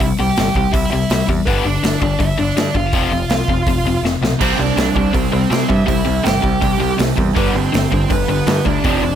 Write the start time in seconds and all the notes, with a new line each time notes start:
0.00 C2 C3 G3 E4, kick, open hi-hat
0.19 C2 C3 G3 G4 G5
0.37 G1 C3 G3, snare, open hi-hat
0.55 C2 C3 G3 G4 G5, kick
0.72 C2 C3 G3 E4 E5, kick, open hi-hat
0.91 C2 C3 G3 E4 E5
1.10 C2 C3 G3, snare, open hi-hat
1.28 E2 C3 G3, kick
1.46 G1 G2 D3 G3 B3 B4, kick, open hi-hat
1.65 G1 G2 D3 D4 D5
1.83 G1 G2 D3, snare, open hi-hat
2.01 G1 G2 D3 D4 D5, kick
2.19 G1 G2 D3 E4 E5, kick, open hi-hat
2.38 G1 G2 D3 D4 D5
2.57 G2 D3 D4 D5, snare, open hi-hat
2.75 G1 G2 D3 F4 F5, kick
2.93 F1 F2 C3 F3, kick, open hi-hat
3.11 F1 F2 C3
3.29 C2 F2 C3, snare, open hi-hat
3.48 F1 F2 C3, kick
3.67 F1 F2 C3, kick, open hi-hat
3.84 F1 F2 C3
4.03 F1 F2 C3, snare
4.21 B1 F2 C3, snare
4.41 C2 C3 G3 C4 C5, kick, open hi-hat, crash
4.58 C2 C3 G3 D4 D5
4.77 C2 C3 G3, snare, open hi-hat
4.96 C2 C3 G3 D4 D5, kick
5.13 C2 C3 G3 C4 C5, kick, open hi-hat
5.32 C2 C3 G3 C4 C5
5.50 C3 G3, snare, open hi-hat
5.68 G2 C3 G3 E4 E5, kick
5.86 C2 C3 G3 E4 E5, kick, open hi-hat
6.05 C2 C3 G3
6.23 G1 C3 G3 G4 G5, snare, open hi-hat
6.42 C2 C3 G3, kick
6.61 C2 C3 G3, kick, open hi-hat
6.80 C2 C3 G3
6.98 C2 C3 G3, snare, open hi-hat
7.17 E2 C3 G3, kick
7.35 G1 G2 D3 G3 B3 B4, kick, open hi-hat
7.55 G1 G2 D3 C4 C5
7.72 G1 G2 D3, snare, open hi-hat
7.92 G1 G2 D3 C4 C5, kick
8.10 G1 G2 D3 B3 B4, kick, open hi-hat
8.28 G1 G2 D3 B3 B4
8.47 G2 D3, snare, open hi-hat
8.65 D2 G2 D3 D4 D5, kick
8.84 F1 F2 C3 F3 D4 D5, kick, open hi-hat
9.03 F1 F2 C3